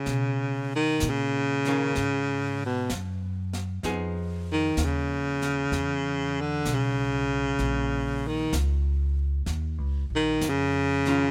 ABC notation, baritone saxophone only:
X:1
M:4/4
L:1/8
Q:"Swing" 1/4=64
K:Ebm
V:1 name="Baritone saxophone" clef=bass
^C, ^D, C,3 =B,, z2 | z E, D,3 =D, _D,2- | D, E, z3 E, D,2 |]